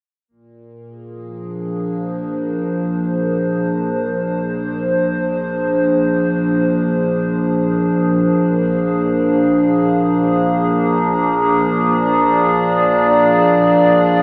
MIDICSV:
0, 0, Header, 1, 4, 480
1, 0, Start_track
1, 0, Tempo, 500000
1, 13656, End_track
2, 0, Start_track
2, 0, Title_t, "Ambient pad"
2, 0, Program_c, 0, 92
2, 295, Note_on_c, 0, 46, 65
2, 855, Note_on_c, 0, 68, 62
2, 1058, Note_on_c, 0, 53, 70
2, 1309, Note_on_c, 0, 62, 69
2, 1800, Note_on_c, 0, 72, 74
2, 11090, Note_on_c, 0, 74, 76
2, 11394, Note_off_c, 0, 72, 0
2, 13656, Note_off_c, 0, 46, 0
2, 13656, Note_off_c, 0, 53, 0
2, 13656, Note_off_c, 0, 62, 0
2, 13656, Note_off_c, 0, 68, 0
2, 13656, Note_off_c, 0, 74, 0
2, 13656, End_track
3, 0, Start_track
3, 0, Title_t, "Synth drone"
3, 0, Program_c, 1, 95
3, 270, Note_on_c, 1, 58, 65
3, 13656, Note_off_c, 1, 58, 0
3, 13656, End_track
4, 0, Start_track
4, 0, Title_t, "Sub bass"
4, 0, Program_c, 2, 38
4, 284, Note_on_c, 2, 34, 79
4, 13656, Note_off_c, 2, 34, 0
4, 13656, End_track
0, 0, End_of_file